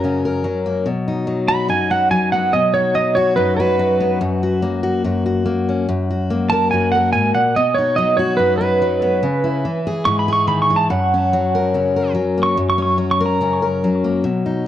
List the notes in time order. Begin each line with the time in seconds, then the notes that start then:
Already playing: F#2 F#3 A#4 A#5
0.04 C#3 C#4
0.25 A#4
0.44 F#3
0.66 A#3
0.86 B2
1.08 D#4
1.27 F#3
1.48 F#4 B5
1.68 F#2 D#4 G#5
1.91 F#4 F#5
2.11 F#3 G#5
2.32 B3 F#5
2.53 B2 D#5
2.74 D#4 C#5
2.95 F#3 D#5
3.15 F#4 C#5
3.36 F#2 D#4 B4
3.57 F#4 B4
3.79 F#3
4.00 B3
4.21 F#2
4.43 F#4
4.62 A#3
4.83 F#4
5.04 F#2 F#4
5.26 F#4
5.46 A#3
5.69 C#4
5.89 F#2
6.10 F#4
6.30 A#3
6.50 A#4 A5
6.71 F#2 F#4 G#5
6.92 A#4 F#5
7.13 G#2 G#5
7.34 A#2 F#5
7.56 B2 D#5
7.74 D#4 C#5
7.96 F#3 D#5
8.17 F#4 C#5
8.37 F#2 D#4 B4
8.58 F#4 B4
8.82 F#3
9.02 B3
9.23 C#3
9.44 E4
9.65 E3
9.87 G#4
10.05 G#2 E4 C#6
10.19 B5
10.28 G#4
10.33 C#6
10.47 D#3 B5
10.62 C#6
10.70 E3
10.76 A5
10.90 F#2 F#5
11.14 C#4
11.33 F#3
11.55 A#4
11.74 C#3 C#4
11.96 A#4
12.15 F#3
12.38 A#3
12.43 C#6
12.57 F#2
12.70 C#6
12.78 C#4
12.82 C#6
12.98 F#3
13.11 C#6
13.21 A#4
13.26 A#5
13.41 C#3 C#4
13.62 A#4
13.84 F#3
14.04 A#3
14.24 B2
14.46 D#4